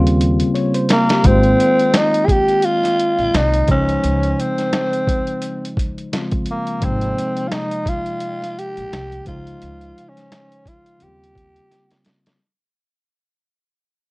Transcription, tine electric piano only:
0.00 1.20 C#3 medium
0.00 1.21 G3 medium
0.00 1.22 A#3 medium
0.00 1.22 C4 medium
0.00 1.25 F4 medium
0.55 0.74 C#5 medium
0.75 0.89 C5 medium
0.90 1.09 A#4 medium
1.10 1.43 G4 medium
1.23 3.64 D#3 medium
1.23 3.64 G#3 medium
1.23 3.65 A#3 medium
1.23 3.65 C4 medium
1.23 3.66 F4 medium
3.66 6.08 C#3 medium
3.66 6.08 F3 medium
3.66 6.09 G#3 medium
3.66 6.09 C5 medium
3.71 6.10 D#4 medium
6.12 6.82 C#3 soft
6.12 6.79 F3 soft
6.12 6.81 G#3 soft
6.12 6.83 C4 soft
6.12 6.83 F4 medium
6.80 9.21 C3 medium
6.80 9.22 F3 medium
6.80 9.22 G#3 medium
6.80 9.23 A#3 medium
6.84 9.23 D#4 medium
9.24 10.96 C#3 medium
9.24 10.97 F3 medium
9.24 10.97 G#3 medium
9.24 10.98 C5 medium
9.28 10.98 D#4 medium
10.98 12.36 C#3 medium
10.98 11.08 F3 soft
10.98 12.37 A#3 medium
10.98 12.38 C4 soft
11.03 12.40 G3 medium
11.03 12.39 F4 medium

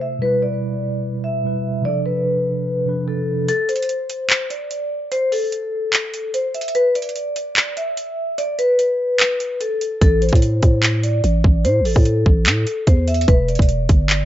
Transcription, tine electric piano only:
0.00 0.16 C3 medium
0.00 0.17 A3 medium
0.00 0.18 E4 medium
0.00 0.19 C5 medium
0.19 1.40 B2 medium
0.19 1.41 G3 medium
0.23 1.43 E4 medium
0.23 1.44 B4 medium
1.43 1.85 B2 soft
1.43 1.85 G3 soft
1.43 1.86 E4 soft
1.43 1.86 B4 medium
1.82 2.83 C3 medium
1.82 2.85 F3 medium
1.86 2.86 D4 medium
1.86 2.87 A4 medium
2.86 3.48 C3 medium
2.86 3.48 F3 medium
2.86 3.49 D4 medium
2.86 3.49 B4 medium

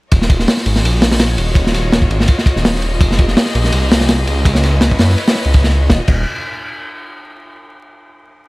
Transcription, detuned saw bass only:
0.12 0.47 D#1 loud
0.66 0.82 G#1 loud
0.84 1.37 A#1 loud
1.38 2.09 D#1 medium
2.10 2.27 G#1 medium
2.56 2.99 D#1 medium
3.01 3.35 F1 loud
3.55 3.71 A#1 medium
3.73 4.26 C2 loud
4.27 4.98 C#2 medium
4.99 5.16 F#2 medium
5.45 5.89 C#2 medium
5.90 6.01 D#1 loud
6.08 6.25 D#1 loud

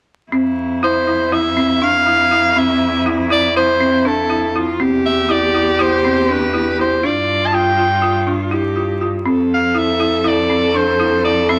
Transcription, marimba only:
0.32 0.77 C4 medium
0.83 1.05 E4 medium
1.07 1.29 E4 medium
1.32 1.54 E4 medium
1.57 1.79 C4 medium
1.82 2.04 D4 medium
2.06 2.29 E4 medium
2.31 2.54 E4 medium
2.56 3.00 C4 medium
3.06 3.28 E4 medium
3.30 3.53 E4 medium
3.56 3.78 E4 medium
3.80 4.03 C4 medium
4.05 4.27 D4 medium
4.30 4.52 E4 medium
4.56 4.78 E4 medium
4.80 5.24 C4 medium
5.29 5.51 E4 medium
5.54 5.77 E4 medium
5.79 6.01 E4 medium
6.05 6.27 C4 medium
6.29 6.51 D4 medium
6.54 6.76 E4 medium
6.80 7.01 E4 medium
7.03 7.47 D4 medium
7.53 7.75 F4 medium
7.78 8.00 F4 medium
8.02 8.24 F4 medium
8.27 8.49 D4 medium
8.51 8.74 E4 medium
8.76 8.98 F4 medium
9.01 9.24 F4 medium
9.26 9.70 C4 medium
9.75 9.97 E4 medium
10.00 10.22 E4 medium
10.24 10.47 E4 medium
10.50 10.72 C4 medium
10.74 10.97 D4 medium
11.00 11.22 E4 medium
11.25 11.46 E4 medium
11.49 11.59 C4 medium

